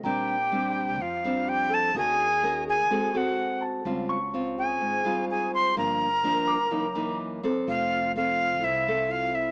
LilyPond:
<<
  \new Staff \with { instrumentName = "Grand piano" } { \time 4/4 \key bes \lydian \tempo 4 = 126 bes''2~ bes''8 r4. | r2. r8 a''8~ | a''8 des'''2~ des'''8 r4 | r4. d'''4 r4. |
r1 | }
  \new Staff \with { instrumentName = "Flute" } { \time 4/4 \key bes \lydian g''2 f''4 g''8 a''8 | aes''4. aes''4 ges''4 r8 | r4. aes''4. aes''8 c'''8 | bes''2. r4 |
f''4 f''4 e''4 f''8 e''8 | }
  \new Staff \with { instrumentName = "Flute section" } { \time 4/4 \key bes \lydian g'2 f'4 g'8 a'8 | aes'4. aes'4 ges'4 r8 | r4. aes'4. aes'8 c''8 | bes'2. r4 |
f'4 f'4 e'4 f'8 e'8 | }
  \new Staff \with { instrumentName = "Nylon-string guitar" } { \time 4/4 \key bes \lydian << { <g c' d'>8 r8 <g c' d'>4 r8 <g c' d'>4. | <des' ges' bes'>8 r8 <des' ges' bes'>8 r8 <c' ges' a'>8 <c' ges' a'>4. | <g c' f'>8 r8 <c' f'>4. <g c' f'>4. | <f bes d'>8 r8 <f bes d'>8 r8 <e bes ees'>8 <e bes ees'>4 <c' a'>8~ |
<c' a'>4 <c' a'>4. <c' e' a'>4. | } \\ { bes,2 f2 | ees2 aes2 | des2 aes,2 | g,2 ges,2 |
f2 c2 | } >> }
  \new Staff \with { instrumentName = "Upright bass" } { \clef bass \time 4/4 \key bes \lydian bes,,2 f,2 | ees,2 aes,,2 | des,2 aes,,2 | g,,2 ges,,2 |
f,,2 c,2 | }
>>